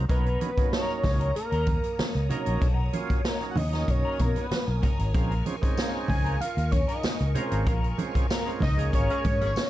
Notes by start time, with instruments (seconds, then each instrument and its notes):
0.09 fingered electric bass B1, tonewheel organ F#3 A#3 C#4 D#4, clean electric guitar F#3 C#4 D#4 A#4, analog synth lead B4, string machine C#5 A#5 D#6, kick, closed hi-hat
0.26 closed hi-hat
0.40 tonewheel organ F#3 A#3 C#4 D#4, closed hi-hat, high conga
0.57 tonewheel organ F#3 A#3 C#4 D#4, muted clean electric guitar stroke, muted fingered electric bass stroke, kick, closed hi-hat
0.72 clean electric guitar F#3 C#4 D#4 A#4, analog synth lead C#5, snare, closed hi-hat
1.03 fingered electric bass C#2, kick, snare, open hi-hat, high conga, low conga
1.20 clean electric guitar F#3 C#4 D#4 A#4, closed hi-hat
1.35 analog synth lead A#4, muted clean electric guitar stroke, closed hi-hat
1.51 fingered electric bass D#2, clean electric guitar F#3 C#4 D#4 A#4, closed hi-hat
1.66 muted clean electric guitar stroke, kick, closed hi-hat, muted conga, high conga
1.83 muted clean electric guitar stroke, closed hi-hat
1.98 muted clean electric guitar stroke, muted fingered electric bass stroke, snare, closed hi-hat, muted conga, high conga
2.15 fingered electric bass C#2, muted clean electric guitar stroke, closed hi-hat
2.29 tonewheel organ F#3 A#3 C#4 D#4, clean electric guitar F#3 C#4 D#4 A#4, closed hi-hat, low conga
2.46 fingered electric bass A#1, clean electric guitar F#3 C#4 D#4 A#4, closed hi-hat
2.61 fingered electric bass B1, clean electric guitar F3 C4 D4 A4, string machine G#5, kick, closed hi-hat
2.73 clean electric guitar F#3 C#4 D#4 A#4
2.93 tonewheel organ F#3 A#3 C#4 F4, closed hi-hat, high conga
3.10 muted clean electric guitar stroke, muted fingered electric bass stroke, kick, closed hi-hat
3.24 clean electric guitar F#3 C#4 D#4 A#4, snare, closed hi-hat
3.41 tonewheel organ F#3 A#3 C#4 D#4, closed hi-hat
3.51 analog synth lead F#5
3.56 fingered electric bass D#2, analog synth lead D#5, muted clean electric guitar stroke, open hi-hat, muted conga, high conga, low conga
3.72 tonewheel organ F#3 A#3 C#4 D#4, clean electric guitar F#3 C#4 D#4 A#4, snare, closed hi-hat
3.88 fingered electric bass B1, analog synth lead C#5, muted clean electric guitar stroke, kick, closed hi-hat
4.05 clean electric guitar F#3 C#4 D#4 A#4
4.19 fingered electric bass B2, analog synth lead A#4, muted clean electric guitar stroke, kick, closed hi-hat, muted conga, high conga
4.35 analog synth lead B4, muted clean electric guitar stroke, closed hi-hat
4.50 muted clean electric guitar stroke, muted fingered electric bass stroke, snare, closed hi-hat, high conga
4.67 fingered electric bass B1, muted clean electric guitar stroke
4.81 clean electric guitar F#3 C#4 D#4 A#4, kick, closed hi-hat, low conga
4.98 fingered electric bass G#1, clean electric guitar F#3 C#4 D#4 A#4, closed hi-hat
5.14 fingered electric bass A#1, clean electric guitar G#3 C#4 F4 A#4, tonewheel organ G#3 C4 C#4 F4, string machine A#4 C#6, kick, closed hi-hat, muted conga
5.32 closed hi-hat
5.45 tonewheel organ G#3 C4 C#4 F4, closed hi-hat, high conga
5.62 tonewheel organ G#3 C4 C#4 D#4, muted clean electric guitar stroke, muted fingered electric bass stroke, kick, closed hi-hat
5.77 clean electric guitar G#3 C#4 F4 A#4, snare, closed hi-hat, tambourine, muted conga
6.08 fingered electric bass C#2, analog synth lead G#5, muted clean electric guitar stroke, kick, open hi-hat, high conga, low conga
6.24 clean electric guitar G#3 C#4 F4 A#4, closed hi-hat
6.40 analog synth lead F5, muted fingered electric bass stroke, closed hi-hat, muted conga
6.57 fingered electric bass D#2, muted clean electric guitar stroke, closed hi-hat
6.72 analog synth lead C#5, kick, closed hi-hat, high conga
6.88 clean electric guitar G#3 C#4 F4 A#4, analog synth lead D#5, closed hi-hat
7.03 muted clean electric guitar stroke, muted fingered electric bass stroke, snare, closed hi-hat, tambourine, high conga
7.20 fingered electric bass C#2, muted clean electric guitar stroke, closed hi-hat
7.34 tonewheel organ G#3 C4 C#4 F4, clean electric guitar G#3 C#4 F4 A#4, closed hi-hat, muted conga, low conga
7.52 fingered electric bass G#1, clean electric guitar G#3 C#4 F4 A#4, closed hi-hat
7.66 fingered electric bass A#1, clean electric guitar G#3 C#4 F4 A#4, kick, closed hi-hat, muted conga
7.84 closed hi-hat
7.97 tonewheel organ G#3 C4 C#4 F4, closed hi-hat, muted conga, high conga
8.15 muted clean electric guitar stroke, muted fingered electric bass stroke, kick, closed hi-hat
8.30 clean electric guitar G#3 C#4 F4 A#4, snare, closed hi-hat, tambourine
8.45 tonewheel organ G#3 C4 C#4 F4, closed hi-hat
8.60 fingered electric bass C#2, analog synth lead D#5, muted clean electric guitar stroke, kick, snare, open hi-hat, muted conga, high conga, low conga
8.77 tonewheel organ G#3 A#3 C#4 G#4, clean electric guitar G#3 C#4 F4 A#4, closed hi-hat
8.93 fingered electric bass G#1, clean electric guitar G#3 C#4 F4 A#4, analog synth lead C#5, kick, closed hi-hat, muted conga
9.10 horn section A#3 C#4 G#4 C#5, closed hi-hat
9.25 fingered electric bass G#2, analog synth lead C#5, kick, closed hi-hat, muted conga, high conga
9.41 fingered electric bass G#1, horn section A#3 C#4 G#4 C#5, muted clean electric guitar stroke, closed hi-hat
9.56 muted clean electric guitar stroke, snare, closed hi-hat, tambourine, high conga